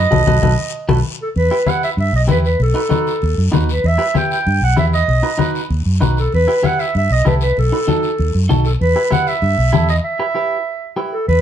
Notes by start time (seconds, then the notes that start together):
Already playing: D#5
0.11 B1 F#4 A4 B4, high conga, long guiro
0.27 B1 F#4 A4 B4, high conga, long guiro
0.42 B1 F#4 A4 B4, high conga, long guiro
0.89 B1 F#4 A4 B4, high conga, long guiro
1.22 A4
1.36 E2 B4, high conga, long guiro
1.51 E4 G4 B4
1.67 E4 G4 B4 F#5, high conga, short guiro
1.83 E5, short guiro
1.97 G2 E5, high conga, long guiro
2.13 B1 D#5
2.28 E2 E4 G4 B4, high conga, short guiro
2.45 B4, short guiro
2.60 B1 A4, high conga, long guiro
2.74 D#4 F#4 B4
2.89 D#4 F#4 B4, high conga, short guiro
3.07 short guiro
3.22 D#2, high conga, long guiro
3.38 F#2
3.52 D#2 D#4 F#4 B4, high conga, short guiro
3.69 B4, short guiro
3.84 E2 E5, high conga, long guiro
3.98 E4 G4 B4
4.14 E4 G4 B4 G5, high conga, short guiro
4.31 G5, short guiro
4.47 G2, high conga, long guiro
4.62 B1 F#5
4.77 E2 E4 G4 B4 E5, high conga, short guiro
4.93 D#5, short guiro
5.08 B1, high conga, long guiro
5.23 D#4 F#4 B4
5.38 D#4 F#4 B4, high conga, short guiro
5.55 short guiro
5.70 D#2, high conga, long guiro
5.86 F#2
6.01 B1 D#4 F#4 B4, high conga, short guiro
6.17 A4, short guiro
6.32 E2 B4, high conga, long guiro
6.48 E4 G4 B4
6.63 E4 G4 B4 F#5, high conga, short guiro
6.79 E5, short guiro
6.95 G2 E5, high conga, long guiro
7.10 B1 D#5
7.25 C2 E4 G4 A4 B4, high conga, short guiro
7.41 B4, short guiro
7.57 B1 A4, high conga, long guiro
7.72 D#4 F#4 B4
7.87 D#4 F#4 A4, high conga, short guiro
8.03 short guiro
8.18 D#2, high conga, long guiro
8.35 F#2
8.49 B1 D#4 F#4 A4, high conga, short guiro
8.65 A4, short guiro
8.81 E2 B4, high conga, long guiro
8.96 E4 G4 B4
9.10 E4 G4 B4 F#5, high conga, short guiro
9.27 E5, short guiro
9.42 G2, high conga, long guiro
9.58 B1
9.73 E2 E4 G4 A4, high conga, short guiro
9.89 D#5, short guiro
10.04 E5
10.19 E4 G4 B4
10.35 E4 G4 B4
10.96 E4 G4 B4
11.13 A4
11.28 E2 B4, high conga, long guiro